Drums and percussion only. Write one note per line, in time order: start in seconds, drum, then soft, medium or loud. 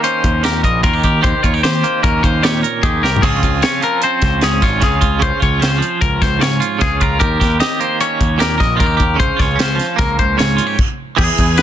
0.04 closed hi-hat medium
0.24 kick medium
0.24 closed hi-hat medium
0.44 snare medium
0.44 closed hi-hat medium
0.64 kick medium
0.64 closed hi-hat medium
0.83 kick loud
0.83 closed hi-hat medium
1.03 kick medium
1.03 closed hi-hat medium
1.24 kick loud
1.24 closed hi-hat medium
1.44 kick medium
1.44 closed hi-hat medium
1.64 snare loud
1.64 closed hi-hat medium
1.84 closed hi-hat medium
2.04 kick loud
2.04 closed hi-hat medium
2.24 kick medium
2.24 closed hi-hat medium
2.44 snare loud
2.44 closed hi-hat medium
2.64 closed hi-hat medium
2.83 kick loud
2.83 closed hi-hat medium
3.05 snare medium
3.16 floor tom medium
3.23 kick loud
3.23 closed hi-hat medium
3.23 crash medium
3.43 kick medium
3.43 closed hi-hat medium
3.62 snare loud
3.62 closed hi-hat medium
3.82 closed hi-hat medium
4.02 closed hi-hat medium
4.22 kick medium
4.22 snare soft
4.22 closed hi-hat medium
4.41 snare medium
4.41 closed hi-hat medium
4.62 kick medium
4.62 snare soft
4.62 closed hi-hat medium
4.82 kick medium
4.82 snare soft
4.82 closed hi-hat medium
5.01 kick medium
5.01 closed hi-hat medium
5.22 kick loud
5.22 closed hi-hat medium
5.42 kick medium
5.42 closed hi-hat medium
5.62 snare medium
5.62 closed hi-hat medium
5.82 closed hi-hat medium
6.02 kick loud
6.02 closed hi-hat medium
6.22 kick medium
6.22 snare soft
6.22 closed hi-hat medium
6.41 snare loud
6.41 closed hi-hat medium
6.62 closed hi-hat medium
6.81 kick medium
6.81 snare soft
6.81 closed hi-hat medium
7.01 kick medium
7.01 closed hi-hat medium
7.21 kick loud
7.21 closed hi-hat medium
7.41 kick medium
7.41 snare soft
7.41 closed hi-hat medium
7.60 snare loud
7.60 closed hi-hat medium
7.81 closed hi-hat medium
8.01 closed hi-hat medium
8.21 kick medium
8.21 closed hi-hat medium
8.40 snare medium
8.40 closed hi-hat medium
8.60 kick medium
8.60 snare soft
8.60 closed hi-hat medium
8.80 kick medium
8.80 closed hi-hat medium
9.00 kick medium
9.00 closed hi-hat medium
9.20 kick loud
9.20 closed hi-hat medium
9.39 kick medium
9.39 snare soft
9.39 closed hi-hat medium
9.59 snare loud
9.59 closed hi-hat medium
9.79 snare soft
9.79 closed hi-hat medium
9.98 kick loud
9.98 snare soft
9.98 closed hi-hat medium
10.19 kick medium
10.19 closed hi-hat medium
10.39 snare medium
10.39 closed hi-hat medium
10.58 closed hi-hat medium
10.79 kick medium
10.79 crash medium
11.18 kick loud
11.18 crash loud
11.38 kick medium
11.38 closed hi-hat medium
11.58 snare loud
11.58 closed hi-hat medium